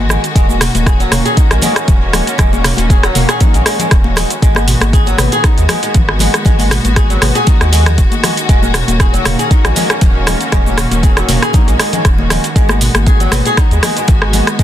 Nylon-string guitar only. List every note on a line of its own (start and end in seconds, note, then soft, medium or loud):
0.10 0.22 G#3 medium
0.36 0.48 G#3 loud
0.49 0.56 G#3 medium
0.87 0.99 G#4 medium
1.00 1.11 F#3 medium
1.12 1.24 A#3 medium
1.25 1.36 G#4 loud
1.37 1.50 D#4 loud
1.51 1.57 G#3 medium
1.63 1.75 G#3 loud
1.76 1.87 G#3 medium
2.14 2.26 G#3 medium
2.39 2.51 G#3 loud
2.53 2.59 G#3 medium
2.90 3.03 G#4 medium
3.04 3.14 F#3 medium
3.16 3.28 A#3 medium
3.29 3.40 G#4 loud
3.41 3.53 D#4 loud
3.55 3.61 G#3 medium
3.66 3.78 G#3 loud
3.80 3.90 G#3 medium
4.17 4.29 G#3 medium
4.43 4.55 G#3 loud
4.56 4.62 G#3 medium
4.94 5.06 G#4 medium
5.07 5.17 F#3 medium
5.19 5.31 B3 medium
5.33 5.43 G#4 loud
5.44 5.56 D#4 loud
5.58 5.64 G#3 medium
5.70 5.82 G#3 loud
5.84 5.94 G#3 medium
6.20 6.33 G#3 medium
6.46 6.58 G#3 loud
6.59 6.66 G#3 medium
6.96 7.09 G#4 medium
7.10 7.21 F#3 medium
7.22 7.34 B3 medium
7.35 7.46 G#4 loud
7.47 7.59 D#4 loud
7.61 7.67 G#3 medium
7.72 7.85 G#3 loud
7.86 7.97 G#3 medium
8.24 8.36 G#3 medium
8.49 8.61 G#3 loud
8.62 8.69 G#3 medium
9.00 9.13 G#4 medium
9.13 9.24 F#3 medium
9.25 9.38 A#3 medium
9.39 9.49 G#4 loud
9.51 9.63 D#4 loud
9.65 9.71 G#3 medium
9.76 9.88 G#3 loud
9.90 10.00 G#3 medium
10.27 10.39 G#3 medium
10.52 10.65 G#3 loud
10.66 10.72 G#3 medium
11.03 11.16 G#4 medium
11.17 11.28 F#3 medium
11.29 11.41 A#3 medium
11.43 11.53 G#4 loud
11.55 11.67 D#4 loud
11.68 11.74 G#3 medium
11.80 11.92 G#3 loud
11.94 12.04 G#3 medium
12.31 12.43 G#3 medium
12.57 12.68 G#3 loud
12.70 12.76 G#3 medium
13.07 13.20 G#4 medium
13.21 13.31 F#3 medium
13.33 13.45 B3 medium
13.46 13.57 G#4 loud
13.58 13.70 D#4 loud
13.72 13.78 G#3 medium
13.84 13.96 G#3 loud
13.98 14.08 G#3 medium
14.34 14.46 G#3 medium
14.60 14.63 G#3 loud